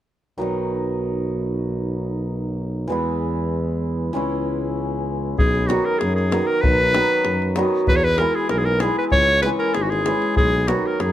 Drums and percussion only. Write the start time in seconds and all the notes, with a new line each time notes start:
5.39 davul low
5.55 davul high
5.70 davul high
6.01 davul high
6.18 davul high
6.32 davul high
6.64 davul low
6.81 davul high
6.95 davul high
7.25 davul high
7.42 davul high
7.56 davul high
7.87 davul low
8.04 davul high
8.18 davul high
8.49 davul high
8.66 davul high
8.80 davul high
9.12 davul low
9.29 davul high
9.43 davul high
9.60 davul high
9.75 davul high
9.92 davul high
10.06 davul high
10.22 davul high
10.37 davul low
10.53 davul high
10.68 davul high
11.00 davul high